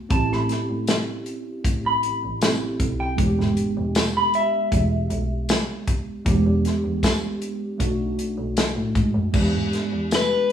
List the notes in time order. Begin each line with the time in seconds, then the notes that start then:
0.09 A1 C4 C#4 E4 G4 A5, kick, closed hi-hat
0.32 A2 B5, snare
0.49 snare, closed hi-hat
0.69 A2
0.87 snare, closed hi-hat, tambourine
1.26 closed hi-hat
1.64 A2, kick, closed hi-hat
1.86 B5
2.03 A1, closed hi-hat
2.23 A1
2.41 C4 C#4 E4 G4, snare, closed hi-hat, tambourine
2.80 B1, kick, closed hi-hat
3.00 G5
3.16 E1 G#3 B3 D4 G4, kick, closed hi-hat
3.39 G#1, snare
3.57 closed hi-hat
3.77 E1
3.95 snare, closed hi-hat, tambourine
4.17 B5
4.34 E5, closed hi-hat
4.72 E1, kick, closed hi-hat
5.10 B1, closed hi-hat
5.49 snare, closed hi-hat, tambourine
5.87 kick, closed hi-hat
6.25 E1 G#3 B3 D4 G4, kick, closed hi-hat
6.46 E2
6.65 snare, closed hi-hat
6.84 E2
7.03 kick, snare, closed hi-hat, tambourine
7.42 closed hi-hat
7.78 B1 A3 D4 D#4 F#4, kick, closed hi-hat
8.17 B1, closed hi-hat
8.38 B1
8.57 snare, closed hi-hat, tambourine
8.76 A2
8.95 G#2, kick, closed hi-hat
9.14 F#2
9.32 E2 G#3 B3 D4 G4, kick, crash
9.53 G#2
9.73 snare, closed hi-hat
9.92 E2
10.11 snare, closed hi-hat, tambourine
10.15 B4